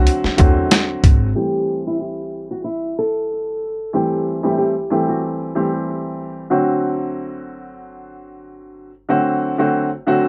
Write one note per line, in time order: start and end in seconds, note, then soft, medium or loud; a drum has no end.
0.00 0.34 D3 loud
0.00 0.34 F#3 medium
0.00 0.34 A3 medium
0.00 0.35 C4 medium
0.00 0.35 F#4 loud
0.07 closed hi-hat loud
0.24 muted upright bass stroke soft
0.24 snare soft
0.37 0.67 E2 loud
0.37 1.27 D3 medium
0.37 1.28 F#3 medium
0.37 1.28 A3 medium
0.37 1.28 C4 medium
0.37 1.28 F#4 loud
0.37 kick medium
0.37 closed hi-hat medium
0.71 snare loud
0.71 closed hi-hat medium
1.04 1.32 G#1 medium
1.04 kick medium
1.04 closed hi-hat medium
1.35 3.74 E3 medium
1.35 3.74 G3 medium
1.35 3.74 A3 medium
1.35 3.74 C4 medium
1.35 1.83 G4 medium
1.35 3.74 G4 loud
1.87 1.99 E4 medium
2.00 2.47 G4 medium
2.51 2.64 F#4 medium
2.64 2.93 E4 medium
2.99 3.90 A4 medium
3.93 4.39 E3 medium
3.93 4.39 G3 medium
3.93 4.39 A3 medium
3.93 4.39 C4 medium
3.93 4.39 G4 loud
3.93 4.41 G4 medium
4.43 4.73 E3 medium
4.43 4.73 G3 medium
4.43 4.73 A3 medium
4.43 4.73 C4 medium
4.43 4.57 E4 medium
4.43 4.73 G4 loud
4.58 5.05 G4 medium
4.90 5.50 E3 medium
4.90 5.50 G3 medium
4.90 5.50 A3 medium
4.90 5.51 C4 medium
4.90 5.51 G4 loud
5.09 5.22 F#4 medium
5.55 6.45 E3 medium
5.55 6.45 G3 medium
5.55 6.45 A3 medium
5.55 6.45 C4 medium
5.55 5.71 G4 medium
5.55 6.45 G4 loud
6.50 8.89 D3 medium
6.50 8.89 F#3 medium
6.50 8.90 A3 medium
6.50 8.90 C4 medium
6.50 8.90 F#4 loud
9.09 9.55 D3 medium
9.09 9.55 F#3 medium
9.09 9.55 A3 medium
9.09 9.55 C4 medium
9.09 9.55 F#4 loud
9.58 9.88 D3 medium
9.58 9.88 F#3 medium
9.58 9.89 A3 medium
9.58 9.89 C4 medium
9.58 9.89 F#4 loud
10.07 10.28 D3 medium
10.07 10.28 F#3 medium
10.07 10.28 A3 medium
10.07 10.28 C4 medium
10.07 10.28 F#4 loud